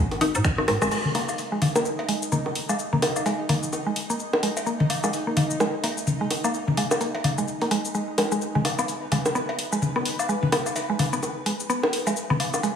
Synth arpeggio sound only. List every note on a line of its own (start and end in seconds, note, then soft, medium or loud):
0.21 0.27 D#4 loud
0.45 0.50 D#3 medium
0.58 0.62 D#4 medium
0.68 0.71 G#3 medium
0.82 0.88 G#3 loud
0.91 0.97 G#3 medium
1.15 1.21 A#3 medium
1.52 1.56 G#3 medium
1.76 1.80 A#3 medium
2.09 2.14 G#3 medium
2.32 2.38 A#3 medium
2.69 2.73 G#3 medium
2.93 2.97 A#3 medium
3.26 3.32 G#3 medium
3.49 3.55 A#3 medium
3.86 3.90 G#3 medium
4.10 4.14 A#3 medium
4.43 4.49 G#3 medium
4.66 4.72 A#3 medium
5.04 5.08 G#3 medium
5.27 5.31 A#3 medium
5.60 5.66 G#3 medium
5.84 5.89 A#3 medium
6.21 6.25 G#3 medium
6.44 6.48 A#3 medium
6.77 6.83 G#3 medium
7.01 7.07 A#3 medium
7.38 7.42 G#3 medium
7.62 7.66 A#3 medium
7.71 7.77 G#3 medium
7.95 8.00 G#3 medium
8.18 8.21 G#3 medium
8.32 8.36 G#3 medium
8.55 8.59 G#3 medium
8.79 8.81 B3 loud
9.12 9.17 G#3 medium
9.35 9.39 B3 loud
9.72 9.76 G#3 medium
9.96 9.98 B3 loud
10.29 10.35 G#3 medium
10.52 10.56 B3 medium
10.90 10.94 G#3 medium
11.13 11.15 B3 loud
11.46 11.52 G#3 medium
11.70 11.73 B3 loud
12.07 12.11 G#3 medium
12.30 12.33 B3 loud
12.63 12.69 G#3 medium